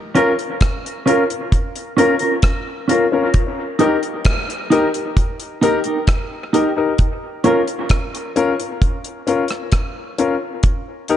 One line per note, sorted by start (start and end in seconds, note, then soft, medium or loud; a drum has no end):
0.15 0.31 C#4 medium
0.15 0.30 C#4 medium
0.15 0.31 F4 medium
0.15 0.32 A#4 loud
0.15 0.31 A#4 loud
0.15 closed hi-hat medium
0.39 closed hi-hat soft
0.61 kick loud
0.61 cross-stick loud
0.61 closed hi-hat medium
0.86 closed hi-hat soft
1.06 1.22 C#4 medium
1.06 1.21 C#4 medium
1.06 1.22 F4 medium
1.06 1.23 A#4 medium
1.06 1.22 A#4 medium
1.06 closed hi-hat medium
1.30 1.39 F4 soft
1.30 1.39 A#4 soft
1.30 closed hi-hat soft
1.52 kick medium
1.52 closed hi-hat medium
1.76 closed hi-hat soft
1.97 2.13 C#4 medium
1.97 2.13 F4 medium
1.97 2.14 A#4 medium
1.97 2.13 A#4 loud
1.97 closed hi-hat medium
2.19 2.33 C#4 medium
2.19 2.33 F4 medium
2.19 2.32 A#4 medium
2.19 closed hi-hat soft
2.42 kick loud
2.42 cross-stick loud
2.42 closed hi-hat medium
2.88 3.04 C#4 medium
2.88 3.05 F4 medium
2.88 3.04 F4 medium
2.88 3.05 A#4 medium
2.88 3.04 A#4 medium
2.88 closed hi-hat medium
3.12 3.26 C#4 medium
3.12 3.27 F4 medium
3.12 3.27 A#4 medium
3.34 kick medium
3.34 closed hi-hat medium
3.79 3.95 D#4 medium
3.79 3.96 G4 loud
3.79 3.95 G4 medium
3.79 3.96 A#4 loud
3.79 closed hi-hat medium
4.03 closed hi-hat soft
4.25 kick loud
4.25 cross-stick loud
4.25 closed hi-hat medium
4.50 closed hi-hat medium
4.70 4.86 D#4 medium
4.70 4.87 G4 medium
4.70 4.86 G4 medium
4.70 4.87 A#4 loud
4.70 4.88 A#4 medium
4.70 closed hi-hat medium
4.94 5.04 G4 soft
4.94 5.04 A#4 soft
4.94 closed hi-hat medium
5.17 kick medium
5.17 closed hi-hat medium
5.40 closed hi-hat soft
5.61 5.78 D#4 medium
5.61 5.77 D#4 medium
5.61 5.78 G4 medium
5.61 5.79 A#4 medium
5.61 5.78 A#4 loud
5.61 closed hi-hat medium
5.84 5.98 D#4 soft
5.84 5.98 G4 medium
5.84 5.97 A#4 medium
5.84 closed hi-hat soft
6.07 kick loud
6.07 cross-stick loud
6.07 closed hi-hat medium
6.53 6.69 D#4 medium
6.53 6.70 G4 medium
6.53 6.69 G4 medium
6.53 6.69 A#4 medium
6.53 6.70 A#4 medium
6.53 closed hi-hat medium
6.77 6.91 D#4 medium
6.77 6.91 G4 medium
6.77 6.92 A#4 medium
6.98 kick medium
6.98 closed hi-hat medium
7.44 7.60 C#4 medium
7.44 7.59 C#4 medium
7.44 7.60 F4 medium
7.44 7.61 F4 medium
7.44 7.60 A#4 medium
7.44 7.61 A#4 medium
7.44 closed hi-hat medium
7.67 closed hi-hat soft
7.89 kick medium
7.89 cross-stick loud
7.89 closed hi-hat medium
8.15 closed hi-hat soft
8.36 8.51 C#4 medium
8.36 8.51 F4 medium
8.36 8.51 A#4 loud
8.36 closed hi-hat medium
8.60 8.69 F4 soft
8.60 8.69 A#4 soft
8.60 closed hi-hat soft
8.82 kick loud
8.82 closed hi-hat medium
9.04 closed hi-hat soft
9.27 9.42 C#4 medium
9.27 9.42 F4 medium
9.27 9.43 A#4 medium
9.27 closed hi-hat medium
9.48 cross-stick medium
9.48 closed hi-hat soft
9.72 kick loud
9.72 cross-stick loud
9.72 closed hi-hat medium
10.18 10.33 C#4 medium
10.18 10.34 F4 medium
10.18 10.34 A#4 medium
10.18 closed hi-hat medium
10.63 kick loud
10.63 closed hi-hat medium
11.08 11.17 D#4 medium
11.08 11.17 G4 medium
11.08 11.17 A#4 medium
11.08 closed hi-hat medium